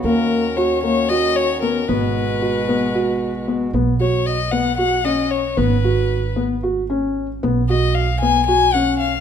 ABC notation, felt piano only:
X:1
M:7/8
L:1/8
Q:1/4=114
K:G#m
V:1 name="Felt piano"
A,2 F A, F2 B, | B,2 F B, F2 B, | B, F2 B, F C2 | B, F2 B, F C2 |
B, F2 B, F C2 |]